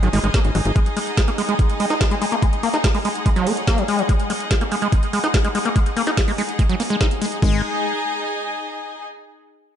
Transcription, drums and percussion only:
0.03 closed hi-hat
0.13 open hi-hat
0.24 closed hi-hat
0.34 kick, snare, closed hi-hat
0.45 closed hi-hat
0.55 open hi-hat
0.65 closed hi-hat
0.76 kick, closed hi-hat
0.86 closed hi-hat
0.97 open hi-hat
1.07 closed hi-hat
1.17 kick, snare, closed hi-hat
1.28 closed hi-hat
1.38 open hi-hat
1.49 closed hi-hat
1.59 kick, closed hi-hat
1.70 closed hi-hat
1.80 open hi-hat
1.90 snare, closed hi-hat
2.01 kick, snare, closed hi-hat
2.11 closed hi-hat
2.22 open hi-hat
2.32 closed hi-hat
2.42 kick, closed hi-hat
2.53 closed hi-hat
2.63 open hi-hat
2.74 snare, closed hi-hat
2.84 kick, snare, closed hi-hat
2.95 open hi-hat
3.05 open hi-hat
3.15 closed hi-hat
3.26 kick, closed hi-hat
3.36 closed hi-hat
3.47 open hi-hat
3.57 closed hi-hat
3.67 kick, snare, closed hi-hat
3.78 closed hi-hat
3.88 open hi-hat
3.99 closed hi-hat
4.09 kick, closed hi-hat
4.20 closed hi-hat
4.30 open hi-hat
4.40 closed hi-hat
4.51 kick, snare, closed hi-hat
4.61 closed hi-hat
4.72 open hi-hat
4.82 closed hi-hat
4.92 kick, closed hi-hat
5.03 closed hi-hat
5.13 open hi-hat
5.24 snare, closed hi-hat
5.34 kick, snare, closed hi-hat
5.45 closed hi-hat
5.55 open hi-hat
5.65 closed hi-hat
5.76 kick, closed hi-hat
5.86 closed hi-hat
5.97 open hi-hat
6.07 snare, closed hi-hat
6.17 kick, snare, closed hi-hat
6.28 open hi-hat
6.38 open hi-hat
6.49 closed hi-hat
6.59 kick, closed hi-hat
6.69 closed hi-hat
6.80 open hi-hat
6.90 closed hi-hat
7.01 kick, snare, closed hi-hat
7.11 closed hi-hat
7.22 open hi-hat
7.32 closed hi-hat
7.42 kick, crash

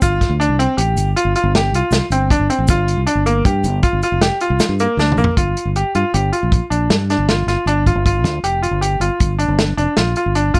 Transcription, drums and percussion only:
0.02 kick, closed hi-hat, shaker
0.21 kick, snare, closed hi-hat
0.41 closed hi-hat
0.60 closed hi-hat
0.78 closed hi-hat
0.97 closed hi-hat, shaker
1.17 closed hi-hat
1.35 closed hi-hat
1.55 snare, closed hi-hat
1.74 closed hi-hat
1.91 snare, closed hi-hat, shaker
2.11 closed hi-hat, shaker
2.30 kick, closed hi-hat
2.50 closed hi-hat
2.68 kick, closed hi-hat, shaker
2.88 closed hi-hat
3.07 closed hi-hat
3.26 closed hi-hat, shaker
3.45 kick, closed hi-hat, shaker
3.64 closed hi-hat, shaker
3.83 kick, closed hi-hat, shaker
4.02 closed hi-hat, shaker
4.21 snare, closed hi-hat
4.40 closed hi-hat
4.60 snare, closed hi-hat, shaker
4.79 closed hi-hat, shaker
4.99 snare, shaker
5.12 mid tom
5.18 shaker
5.24 floor tom
5.37 kick, closed hi-hat
5.57 closed hi-hat
5.76 closed hi-hat
5.95 closed hi-hat
6.14 closed hi-hat
6.33 closed hi-hat
6.52 kick, closed hi-hat
6.71 closed hi-hat
6.90 snare, closed hi-hat
7.10 snare, closed hi-hat
7.29 snare, closed hi-hat
7.48 snare, closed hi-hat
7.67 closed hi-hat
7.86 kick, closed hi-hat
8.06 kick, closed hi-hat
8.25 snare, closed hi-hat
8.44 closed hi-hat
8.63 closed hi-hat
8.82 closed hi-hat
9.01 closed hi-hat
9.20 kick, closed hi-hat
9.39 closed hi-hat
9.59 snare, closed hi-hat
9.78 closed hi-hat
9.97 snare, closed hi-hat
10.16 closed hi-hat
10.35 closed hi-hat
10.54 kick, closed hi-hat

